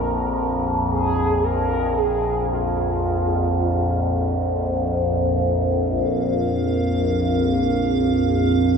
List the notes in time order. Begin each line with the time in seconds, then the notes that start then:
Already playing: A#1 F2 A#4
0.90 G#4
1.44 A#4
1.98 G#4
2.53 F4
5.92 A#1 F2 F5, taiko